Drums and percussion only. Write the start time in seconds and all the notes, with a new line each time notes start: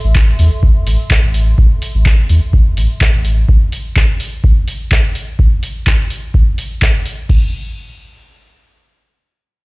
0.15 kick, clap
0.39 open hi-hat
0.63 kick
0.87 open hi-hat
1.10 kick, clap
1.34 open hi-hat
1.58 kick
1.82 open hi-hat
2.06 kick, clap
2.29 open hi-hat
2.53 kick
2.77 open hi-hat
3.01 kick, clap
3.25 open hi-hat
3.49 kick
3.72 open hi-hat
3.96 kick, clap
4.20 open hi-hat
4.44 kick
4.68 open hi-hat
4.91 kick, clap
5.15 open hi-hat
5.39 kick
5.63 open hi-hat
5.87 kick, clap
6.10 open hi-hat
6.34 kick
6.58 open hi-hat
6.82 kick, clap
7.06 open hi-hat
7.29 kick, crash